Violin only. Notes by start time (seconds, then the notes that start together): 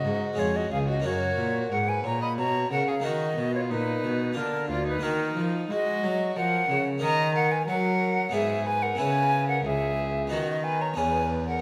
Already playing: F#4
0.39 F4
0.56 F#4
0.72 G#4
0.89 F#4
1.05 F#4
1.71 A#4
1.88 B4
2.05 C#5
2.22 D#5
2.38 C#5
2.72 A#4
2.88 G#4
3.04 F#4
3.54 F4
3.70 D#4
4.37 D4
4.70 F4
4.87 D#4
5.03 D#4
5.71 F#4
6.37 A#4
7.02 D#5
7.35 A#4
7.52 B4
7.67 A#4
8.33 G#4
8.66 B4
8.83 A#4
8.99 B4
9.49 A#4
9.65 G#4
10.31 F#4
10.65 B4
10.81 C#5
10.98 B4
11.48 A#4